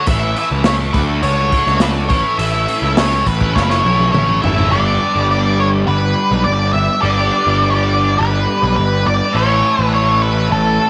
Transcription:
Already playing: E6
0.05 A1 A2 E3 B4 E5 A5 C#6, kick, open hi-hat
0.09 A3 C#4 E4
0.22 A3 C#4 E4
0.37 E3 A3 C#4 E4 E5, open hi-hat
0.51 C#2
0.64 A2 E3 C#5, snare, open hi-hat
0.68 A3 C#4 E4
0.81 A3 C#4 E4
0.93 D2 D3 A3 D4 F#4 A4 B4 F#5 A5, kick, open hi-hat
1.10 A3 D4 F#4
1.23 C#2 C#5, open hi-hat
1.52 D3 A3 D4 F#4, kick, open hi-hat
1.66 C#2, snare
1.80 D3 A3 D4 B4, snare, open hi-hat
1.85 F#4
1.95 A3 D4 F#4
2.09 A1 A2 E3 A3 C#4 E4 B4 C#5 A5 C#6, kick, open hi-hat
2.24 A3 C#4 E4
2.38 A1 A2 E3 A3 C#4 E4 E5, open hi-hat
2.54 A3 C#4 E4
2.68 E3 A3 C#4 E4, open hi-hat
2.82 C#2
2.97 A2 E3 A3 C#4 E4 C#5, snare, open hi-hat
3.12 A3 C#4 E4
3.26 A1 B4, muted overdriven electric guitar stroke, kick, open hi-hat
3.40 A3 C#4 E4, kick
3.55 F#1 C#5, kick, snare
3.63 B4
3.69 C#5, snare
3.84 B1 E3 A3 C#4 E4, high tom
4.00 high tom
4.11 A1 A2 E3 A3 C#4 E4 C#5, mid tom
4.26 A3 C#4 E4, mid tom
4.41 G#1 E3 A3 C#4 E4 E5, floor tom
4.55 A3 C#4 E4, floor tom
4.69 G1 G3 B3 D4 G4 B4 D5 G5 D6
5.15 G1
5.31 D5
5.60 C#5
5.88 G1 B4
6.31 B1
6.44 G1 D5
6.73 G1 E5
7.02 G1 G3 B3 D4 G4 D5
7.46 G1
7.63 D5
7.70 C#5
7.75 D5
8.19 G1 B4
8.63 B1
8.76 G1 B4
9.06 G1 D5
9.32 A1 A2 E3 A3 C#4 A4 C#5 E5 A5 E6
9.37 C#5
9.79 A1
9.83 B4
9.94 C#5
10.22 B4
10.51 A1 A4

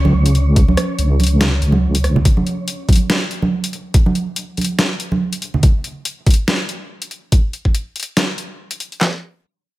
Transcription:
Already playing: C#2 C#4 C#5
0.05 high conga
0.14 C#2
0.26 closed hi-hat
0.35 closed hi-hat
0.56 kick, closed hi-hat
0.68 high conga
0.77 cross-stick, closed hi-hat
0.99 C#2, closed hi-hat
1.20 closed hi-hat, high conga
1.24 closed hi-hat
1.27 closed hi-hat
1.41 snare, closed hi-hat
1.62 C#2, closed hi-hat
1.72 high conga
1.95 closed hi-hat
2.04 cross-stick, closed hi-hat
2.16 low conga
2.25 kick, closed hi-hat
2.37 high conga
2.47 closed hi-hat
2.68 closed hi-hat
2.88 kick, closed hi-hat, high conga
2.93 closed hi-hat
2.96 closed hi-hat
3.10 snare, closed hi-hat
3.31 closed hi-hat
3.42 high conga
3.64 closed hi-hat
3.73 closed hi-hat
3.94 kick, closed hi-hat
4.06 high conga
4.15 closed hi-hat
4.36 closed hi-hat
4.57 closed hi-hat, high conga
4.61 closed hi-hat
4.64 closed hi-hat
4.79 snare, closed hi-hat
5.00 closed hi-hat
5.12 high conga
5.33 closed hi-hat
5.42 closed hi-hat
5.54 low conga
5.63 kick, closed hi-hat
5.84 closed hi-hat
6.05 closed hi-hat
6.27 kick, closed hi-hat
6.30 closed hi-hat
6.34 closed hi-hat
6.48 snare, closed hi-hat
6.69 closed hi-hat
7.02 closed hi-hat
7.11 closed hi-hat
7.32 kick, closed hi-hat
7.53 closed hi-hat
7.65 kick
7.75 closed hi-hat
7.96 closed hi-hat
8.00 closed hi-hat
8.03 closed hi-hat
8.17 snare, closed hi-hat
8.38 closed hi-hat
8.71 closed hi-hat
8.80 closed hi-hat
8.92 closed hi-hat
9.01 snare, clap

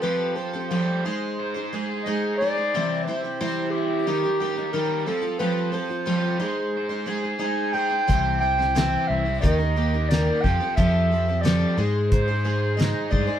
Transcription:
0.02 F3 G3 C4 G4 A4 B4
0.36 G3 C4 G4 A4 C5
0.53 C4 G4 A4
0.71 F3 G3 C4 G4 A4
1.05 G#3 D#4 G#4 C5
1.39 C5
1.54 D#4 G#4 C5
1.73 G#3 D#4 G#4 C5
2.03 G#3 D#4 G#4 D#5
2.07 C5
2.38 G#3 D5
2.42 D#4 G#4 C5
2.57 D#4 G#4 C5
2.74 C3 E3 G3 C4 E4 C5
3.05 G3 C4 E4 C5
3.09 C5
3.24 G3 C4 E4 C5
3.40 C3 E3 G3 C4 E4 C5
3.71 E4 G4
4.07 D#3 G3 D#4 G4 A#4
4.23 D#4 G4 A#4
4.40 G3 D#4 G4 A#4
4.57 D#4 G4 A#4
4.72 D#3 G3 D#4 G4 A#4
5.06 F3 G3 C4 F4 A4
5.22 C4 F4 A4
5.39 F3 G3 C4 F4 A4 B4
5.72 G3 C4 F4 A4 C5
5.89 C4 F4 A4
6.06 F3 G3 C4 F4 A4
6.39 G#3 D#4 G#4 C5
6.77 C5
6.89 D#4 G#4 C5
7.06 G#3 D#4 G#4 C5
7.23 D#4 G#4 C5
7.39 G#3 D#4 G#4 C5 G#5
7.44 D#4
7.73 G#3 D#4 G#4 C5 G5
7.90 D#4 G#4 C5
8.07 C2 C3 E3 G3 C4 E4 C5, kick, closed hi-hat
8.40 G3 C4 E4 C5 G5
8.58 G3 C4 E4 C5, snare
8.75 C3 E3 G3 C4 E4 C5, snare, closed hi-hat
9.07 C2 E4 E5
9.25 G3 C4 E4 C5
9.40 D#2 D#3 A#3 D#4 G4 A#4 D#5, kick, closed hi-hat
9.58 D#4 G4 A#4
9.76 A#3 D#4 G4 A#4
9.94 D#4 G4 A#4
10.09 D#3 G3 A#3 D#4 G4 A#4 D5, snare, closed hi-hat
10.42 F2 F3 G3 C4 G4 A4 G5, kick, snare
10.60 C4 G4 A4
10.76 F2 F3 G3 C4 G4 A4 E5, kick, closed hi-hat
11.11 G3 C4 G4 A4
11.29 C4 G4 A4
11.41 F3 G3 C4 G4 A4 D5, closed hi-hat
11.46 snare
11.77 G#2 G#3 D#4 G#4 C5
12.09 C5, kick, closed hi-hat
12.28 D#4 G#4 C5
12.44 G#3 D#4 G#4 C5
12.77 G#3 D#4 G#4 C5 D#5, closed hi-hat
12.81 snare
13.10 G2 G#3 D#4 G#4 C5 D5, kick
13.27 D#4 G#4 C5

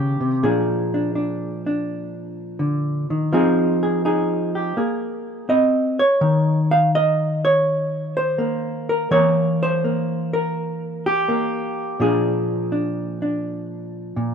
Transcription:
Already playing: C#3 D#3 A#3 G4 A#4
0.20 C3
0.43 A#2 F3 D4 G#4
0.94 D4
1.15 D4
1.66 D4
2.59 D3
3.10 D#3
3.33 F3 C4 D#4 G#4
3.83 G#4
4.05 D#4 G#4
4.55 G4
4.77 A#3 G#4
5.49 C4 D#5
5.99 C#5
6.21 D#3
6.71 F5
6.95 D#5
7.45 C#5
8.17 C5
8.38 A#3
8.89 A#4
9.11 E3 A#3 A#4 C#5
9.63 C5
9.84 A#3
10.33 A#4
11.06 G4
11.29 A#3
12.00 A#2 F3 D4 G#4
12.72 D4
13.22 D4
14.16 A#2

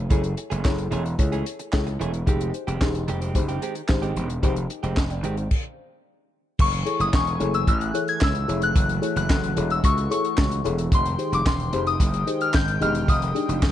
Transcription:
0.10 F#1 E3 A3 C#4 E4 G#4 A4 C#5, kick, closed hi-hat
0.24 muted clean electric guitar stroke, closed hi-hat
0.37 muted clean electric guitar stroke, closed hi-hat
0.50 F#1 E3 A3 C#4 G#4, closed hi-hat
0.64 F#1 E4 G#4 A4 C#5, muted clean electric guitar stroke, kick, snare, clap
0.78 muted clean electric guitar stroke, closed hi-hat
0.91 E1 E3 A3 C#4 G#4, closed hi-hat
1.05 muted clean electric guitar stroke, closed hi-hat
1.18 C#2 E4 G#4 A4 C#5, muted clean electric guitar stroke, kick, closed hi-hat
1.32 E3 A3 C#4 G#4, closed hi-hat
1.46 muted clean electric guitar stroke, closed hi-hat
1.59 muted clean electric guitar stroke, closed hi-hat
1.72 C#2 E4 G#4 A4 C#5, kick, snare, clap
1.87 muted clean electric guitar stroke, closed hi-hat
2.00 E1 E3 A3 C#4 G#4, closed hi-hat
2.13 muted clean electric guitar stroke, closed hi-hat
2.27 F1 D#3 G#3 C4 D#4 G4 G#4 C5, kick, closed hi-hat
2.41 closed hi-hat
2.54 muted clean electric guitar stroke, closed hi-hat
2.67 F1 D#3 G#3 C4 G4, closed hi-hat
2.81 E1 D#4 G4 G#4 C5, muted clean electric guitar stroke, kick, snare, clap
2.94 muted clean electric guitar stroke, closed hi-hat
3.08 F1 D#3 G#3 C4 G4, closed hi-hat
3.21 D#3 G#3 C4 G4, closed hi-hat
3.35 F#1 D#4 G4 G#4 C5, kick, closed hi-hat
3.48 D#3 G#3 C4 G4, closed hi-hat
3.62 D#3 G#3 C4 G4, closed hi-hat
3.75 muted clean electric guitar stroke, closed hi-hat
3.88 G#1 D#4 G4 G#4 C5, muted clean electric guitar stroke, kick, snare, clap
4.02 D#3 G#3 C4 G4, closed hi-hat
4.16 E1 D#3 G#3 C4 G4, closed hi-hat
4.30 muted clean electric guitar stroke, closed hi-hat
4.43 F1 D#3 G#3 C4 D#4 G4 G#4 C5, kick, closed hi-hat
4.56 muted clean electric guitar stroke, closed hi-hat
4.70 muted clean electric guitar stroke, closed hi-hat
4.83 F1 D#3 G#3 C4 G4, closed hi-hat
4.97 F1 D#5 G#5, muted clean electric guitar stroke, kick, snare, clap
5.10 D5 G5, muted clean electric guitar stroke, closed hi-hat
5.23 G#1 D#3 G#3 C4 G4, closed hi-hat
5.37 C5 F5, muted clean electric guitar stroke, closed hi-hat
5.51 kick, crash
6.59 F#1 E3 A3 G#5 C#6, kick, crash
6.73 closed hi-hat
6.86 E4 G#4 A4 C#5, closed hi-hat
7.00 F#1 D#6, closed hi-hat
7.13 E1 C#6, kick, snare, clap
7.27 closed hi-hat
7.40 F#1 E4 G#4 A4 C#5, closed hi-hat
7.54 E6, closed hi-hat
7.67 A1 F#6, kick, closed hi-hat
7.81 closed hi-hat
7.94 E4 G#4 A4 C#5, closed hi-hat
8.08 G#6, closed hi-hat
8.21 C#2 E6, kick, snare, clap
8.35 closed hi-hat
8.48 F1 E4 G#4 A4 C#5, closed hi-hat
8.62 F#6, closed hi-hat
8.76 F#1 F#4, kick, closed hi-hat
8.89 closed hi-hat
9.02 E4 G#4 A4 C#5, closed hi-hat
9.16 F#1 F#6, closed hi-hat
9.30 F#1, kick, snare, clap
9.43 closed hi-hat
9.56 E1 E4 G#4 A4 C#5, closed hi-hat
9.70 E6, closed hi-hat
9.84 C#2 C#6, kick, closed hi-hat
9.98 closed hi-hat
10.10 E4 G#4 A4 C#5 C#6, closed hi-hat
10.24 closed hi-hat
10.37 C#2, kick, snare, clap
10.52 closed hi-hat
10.64 E1 E4 G#4 A4 C#5, closed hi-hat
10.78 closed hi-hat
10.92 F1 D#3 G#3 G5 C6, kick, closed hi-hat
11.06 closed hi-hat
11.18 D#4 G4 G#4 C5, closed hi-hat
11.32 F1 D6, closed hi-hat
11.46 E1 C6, kick, snare, clap
11.60 closed hi-hat
11.73 F1 D#4 G4 G#4 C5, closed hi-hat
11.87 D#6, closed hi-hat
12.00 F#1, kick, closed hi-hat
12.14 closed hi-hat
12.27 D#4 G4 G#4 C5, closed hi-hat
12.41 F6, closed hi-hat
12.53 G#1 G6, kick, snare, clap
12.68 closed hi-hat
12.81 E1 D#4 G4 G#4 D#5 F6, closed hi-hat
12.95 closed hi-hat
13.08 F1 D#6, kick, closed hi-hat
13.22 closed hi-hat
13.34 D4 D#4 G4 G#4, closed hi-hat
13.49 F1, closed hi-hat
13.62 F1, kick, snare, clap

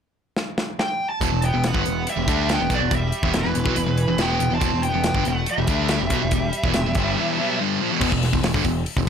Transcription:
0.37 snare
0.58 snare
0.79 G5, snare
1.09 A5
1.21 E1 E2 B2, kick, closed hi-hat
1.31 E1 E2 B2
1.42 B3 G5, closed hi-hat
1.54 E1 E2 B2
1.64 B3, snare, closed hi-hat
1.68 F#5
1.74 G1 G2 D3, kick
1.85 E1 E2 B2, closed hi-hat
2.07 G3 E5, closed hi-hat
2.17 E1 E2 B2
2.27 D2 D3 A3 D4, kick, closed hi-hat
2.49 B3 G5, snare, closed hi-hat
2.60 E1 E2 B2
2.70 B1 B2 F#3, kick, closed hi-hat
2.75 F#3 D5
2.81 E1 E2 B2
2.91 E1 E2 B2 G3, kick, closed hi-hat
2.95 E5
3.12 closed hi-hat
3.23 E1 E2 B2, kick
3.34 E1 E2 B2 B4, snare, closed hi-hat
3.39 E3
3.45 E1 E2 B2
3.54 E1 E2 B2, closed hi-hat
3.64 B1 B2 F#3, kick
3.75 E1 E2 B2, closed hi-hat
3.87 E1 E2 B2
3.98 closed hi-hat
4.08 E1 E2 B2
4.18 E1 E2 B2 E3 G5, snare, closed hi-hat
4.23 B3
4.40 E1 E2 B2, closed hi-hat
4.51 E1 E2 B2 A5
4.56 C4
4.61 E1 E2 B2, kick, closed hi-hat
4.72 E1 E2 B2
4.83 G5, closed hi-hat
4.88 B3
4.94 E1 E2 B2
5.04 snare, closed hi-hat
5.14 G1 G2 D3, kick
5.25 E1 E2 B2 F#5, closed hi-hat
5.30 A3
5.46 closed hi-hat
5.51 G3 E5
5.58 E1 E2 B2
5.67 D2 D3 A3 D4, kick, closed hi-hat
5.89 snare, closed hi-hat
6.01 E1 E2 B2
6.10 B1 B2 F#3, kick, closed hi-hat
6.21 E1 E2 B2
6.31 E1 E2 B2, kick, closed hi-hat
6.53 closed hi-hat
6.63 E1 E2 B2, kick
6.74 E1 E2 B2, snare, closed hi-hat
6.86 E1 E2 B2
6.95 G1 G2, kick, closed hi-hat
6.99 D3 G3
7.19 E2 B2 E3
7.41 B2 F#3 B3
7.60 G2 D3 G3
7.80 A#2 F3
7.90 E2 B2
8.01 E1 E2 B2, kick, crash
8.12 E1 E2 B2, kick
8.23 snare, open hi-hat
8.32 E1 E2 B2, kick
8.43 E1 E2 B2, snare, open hi-hat
8.54 G1 G2 D3, kick
8.64 E1 E2 B2, kick, open hi-hat
8.86 open hi-hat
8.96 E1 E2 B2, kick

